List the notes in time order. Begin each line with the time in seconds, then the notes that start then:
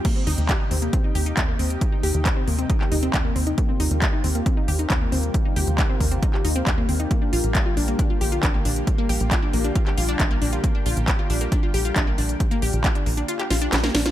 Already playing: G4
0.05 C3 G3 A#3 D#4, kick, closed hi-hat, crash
0.16 C4
0.27 D#2 D#4, open hi-hat
0.38 D#2, closed hi-hat
0.49 G4, kick, clap, closed hi-hat
0.60 D#4
0.71 D#2 C4, open hi-hat
0.82 A#3, closed hi-hat
0.93 C4, kick, closed hi-hat
1.04 D#4
1.15 D#2 G4, open hi-hat
1.26 D#4, closed hi-hat
1.37 D#2 C4, kick, clap, closed hi-hat
1.48 A#3
1.59 D#2 C4, open hi-hat
1.70 closed hi-hat
1.81 kick, closed hi-hat
1.92 D#4
2.03 D#2 G4, open hi-hat
2.14 D#2, closed hi-hat
2.25 D#4, kick, clap, closed hi-hat
2.37 C4
2.48 D#2 A#3, open hi-hat
2.59 C4, closed hi-hat
2.70 D#4, kick, closed hi-hat
2.81 G4, clap
2.92 D#2 D#4, open hi-hat
3.03 C4, closed hi-hat
3.14 D#2, kick, clap, closed hi-hat
3.25 A#3
3.36 D#2 C4, open hi-hat
3.47 D#4, closed hi-hat
3.58 A#3 F4, kick, closed hi-hat
3.69 C4
3.80 D#2 D#4, open hi-hat
3.91 D#2, closed hi-hat
4.02 G4, kick, clap, closed hi-hat
4.13 D#4
4.24 D#2 C4, open hi-hat
4.35 A#3, closed hi-hat
4.46 C4, kick, closed hi-hat
4.57 D#4
4.68 D#2 G4, open hi-hat
4.79 D#4, closed hi-hat
4.90 D#2 C4, kick, clap, closed hi-hat
5.01 A#3
5.12 D#2 C4, open hi-hat
5.23 closed hi-hat
5.34 kick, closed hi-hat
5.45 D#4
5.56 D#2 G4, open hi-hat
5.67 D#2, closed hi-hat
5.78 D#4, kick, clap, closed hi-hat
5.89 C4
6.00 D#2 A#3, kick, open hi-hat
6.12 C4, closed hi-hat
6.23 D#4, kick, closed hi-hat
6.34 G4, clap
6.45 D#2 D#4, open hi-hat
6.56 C4, closed hi-hat
6.67 D#2, kick, clap, closed hi-hat
6.78 A#3
6.89 D#2 C4, open hi-hat
7.00 D#4, closed hi-hat
7.11 D3 A#3 G4, kick, closed hi-hat
7.22 D4
7.33 A#1 F4, open hi-hat
7.44 A#1, closed hi-hat
7.55 G4, kick, clap, closed hi-hat
7.66 F4
7.77 A#1 D4, open hi-hat
7.88 A#3, closed hi-hat
7.99 D4, kick, closed hi-hat
8.10 F4
8.21 A#1 G4, open hi-hat
8.32 F4, closed hi-hat
8.43 A#1 D4, kick, clap, closed hi-hat
8.54 A#3
8.65 A#1 D4, open hi-hat
8.76 closed hi-hat
8.87 kick, closed hi-hat
8.98 A#3
9.09 A#1 G4, open hi-hat
9.20 A#1, closed hi-hat
9.31 F4, kick, clap, closed hi-hat
9.42 D4
9.53 A#1 A#3, open hi-hat
9.64 D4, closed hi-hat
9.75 F4, kick, closed hi-hat
9.87 G4, clap
9.98 A#1 F4, open hi-hat
10.09 D4, closed hi-hat
10.20 A#1, kick, clap, closed hi-hat
10.31 A#3
10.42 A#1 D4, open hi-hat
10.53 F4, closed hi-hat
10.64 A#3, kick, closed hi-hat
10.75 D4
10.86 A#1 F4, open hi-hat
10.97 A#1, closed hi-hat
11.08 G4, kick, clap, closed hi-hat
11.19 F4
11.30 A#1 D4, open hi-hat
11.41 A#3, closed hi-hat
11.52 D4, kick, closed hi-hat
11.63 F4
11.74 A#1 G4, open hi-hat
11.85 F4, closed hi-hat
11.96 A#1 D4, kick, clap, closed hi-hat
12.07 A#3
12.18 A#1 D4, open hi-hat
12.29 closed hi-hat
12.40 kick, closed hi-hat
12.51 A#3, closed hi-hat
12.62 A#1 G4, open hi-hat
12.73 A#1, closed hi-hat
12.84 F4, kick, clap, closed hi-hat
12.95 D4, closed hi-hat
13.06 A#1 A#3, open hi-hat
13.17 D4, closed hi-hat
13.28 F4, closed hi-hat
13.39 G4, clap, closed hi-hat
13.50 A#1 F4, snare, open hi-hat
13.62 D4, closed hi-hat
13.73 A#1, snare, clap, closed hi-hat
13.84 A#3, snare, closed hi-hat
13.95 A#1 D4, snare, open hi-hat
14.06 F4, snare, closed hi-hat